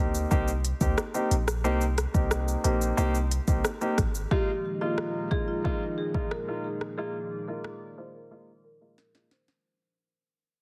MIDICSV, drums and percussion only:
0, 0, Header, 1, 2, 480
1, 0, Start_track
1, 0, Tempo, 666667
1, 1185, Time_signature, 4, 2, 24, 8
1, 7640, End_track
2, 0, Start_track
2, 0, Title_t, "Drums"
2, 105, Note_on_c, 9, 82, 84
2, 177, Note_off_c, 9, 82, 0
2, 223, Note_on_c, 9, 82, 69
2, 226, Note_on_c, 9, 36, 89
2, 295, Note_off_c, 9, 82, 0
2, 298, Note_off_c, 9, 36, 0
2, 344, Note_on_c, 9, 82, 54
2, 416, Note_off_c, 9, 82, 0
2, 465, Note_on_c, 9, 42, 78
2, 465, Note_on_c, 9, 82, 52
2, 537, Note_off_c, 9, 42, 0
2, 537, Note_off_c, 9, 82, 0
2, 581, Note_on_c, 9, 82, 63
2, 582, Note_on_c, 9, 36, 90
2, 653, Note_off_c, 9, 82, 0
2, 654, Note_off_c, 9, 36, 0
2, 704, Note_on_c, 9, 37, 101
2, 704, Note_on_c, 9, 82, 67
2, 776, Note_off_c, 9, 37, 0
2, 776, Note_off_c, 9, 82, 0
2, 825, Note_on_c, 9, 82, 55
2, 897, Note_off_c, 9, 82, 0
2, 946, Note_on_c, 9, 42, 81
2, 946, Note_on_c, 9, 82, 57
2, 1018, Note_off_c, 9, 42, 0
2, 1018, Note_off_c, 9, 82, 0
2, 1064, Note_on_c, 9, 37, 94
2, 1065, Note_on_c, 9, 82, 73
2, 1136, Note_off_c, 9, 37, 0
2, 1137, Note_off_c, 9, 82, 0
2, 1185, Note_on_c, 9, 82, 72
2, 1257, Note_off_c, 9, 82, 0
2, 1304, Note_on_c, 9, 82, 54
2, 1376, Note_off_c, 9, 82, 0
2, 1424, Note_on_c, 9, 42, 68
2, 1424, Note_on_c, 9, 82, 51
2, 1426, Note_on_c, 9, 37, 89
2, 1496, Note_off_c, 9, 42, 0
2, 1496, Note_off_c, 9, 82, 0
2, 1498, Note_off_c, 9, 37, 0
2, 1544, Note_on_c, 9, 36, 90
2, 1544, Note_on_c, 9, 82, 78
2, 1616, Note_off_c, 9, 36, 0
2, 1616, Note_off_c, 9, 82, 0
2, 1663, Note_on_c, 9, 37, 100
2, 1664, Note_on_c, 9, 82, 78
2, 1735, Note_off_c, 9, 37, 0
2, 1736, Note_off_c, 9, 82, 0
2, 1787, Note_on_c, 9, 82, 55
2, 1859, Note_off_c, 9, 82, 0
2, 1904, Note_on_c, 9, 42, 78
2, 1904, Note_on_c, 9, 82, 55
2, 1976, Note_off_c, 9, 42, 0
2, 1976, Note_off_c, 9, 82, 0
2, 2026, Note_on_c, 9, 82, 81
2, 2098, Note_off_c, 9, 82, 0
2, 2144, Note_on_c, 9, 82, 72
2, 2216, Note_off_c, 9, 82, 0
2, 2266, Note_on_c, 9, 82, 53
2, 2338, Note_off_c, 9, 82, 0
2, 2387, Note_on_c, 9, 42, 79
2, 2387, Note_on_c, 9, 82, 57
2, 2459, Note_off_c, 9, 42, 0
2, 2459, Note_off_c, 9, 82, 0
2, 2503, Note_on_c, 9, 36, 94
2, 2503, Note_on_c, 9, 82, 65
2, 2575, Note_off_c, 9, 36, 0
2, 2575, Note_off_c, 9, 82, 0
2, 2625, Note_on_c, 9, 37, 107
2, 2625, Note_on_c, 9, 82, 65
2, 2697, Note_off_c, 9, 37, 0
2, 2697, Note_off_c, 9, 82, 0
2, 2745, Note_on_c, 9, 82, 55
2, 2817, Note_off_c, 9, 82, 0
2, 2865, Note_on_c, 9, 37, 96
2, 2866, Note_on_c, 9, 36, 99
2, 2866, Note_on_c, 9, 42, 83
2, 2866, Note_on_c, 9, 82, 59
2, 2937, Note_off_c, 9, 37, 0
2, 2938, Note_off_c, 9, 36, 0
2, 2938, Note_off_c, 9, 42, 0
2, 2938, Note_off_c, 9, 82, 0
2, 2986, Note_on_c, 9, 82, 70
2, 3058, Note_off_c, 9, 82, 0
2, 3105, Note_on_c, 9, 36, 124
2, 3177, Note_off_c, 9, 36, 0
2, 3584, Note_on_c, 9, 37, 100
2, 3656, Note_off_c, 9, 37, 0
2, 3826, Note_on_c, 9, 36, 86
2, 3898, Note_off_c, 9, 36, 0
2, 4068, Note_on_c, 9, 36, 90
2, 4140, Note_off_c, 9, 36, 0
2, 4424, Note_on_c, 9, 36, 90
2, 4496, Note_off_c, 9, 36, 0
2, 4546, Note_on_c, 9, 37, 100
2, 4618, Note_off_c, 9, 37, 0
2, 4905, Note_on_c, 9, 37, 92
2, 4977, Note_off_c, 9, 37, 0
2, 5504, Note_on_c, 9, 37, 97
2, 5576, Note_off_c, 9, 37, 0
2, 6466, Note_on_c, 9, 38, 50
2, 6538, Note_off_c, 9, 38, 0
2, 6586, Note_on_c, 9, 38, 56
2, 6658, Note_off_c, 9, 38, 0
2, 6705, Note_on_c, 9, 38, 82
2, 6777, Note_off_c, 9, 38, 0
2, 6827, Note_on_c, 9, 38, 78
2, 6899, Note_off_c, 9, 38, 0
2, 7640, End_track
0, 0, End_of_file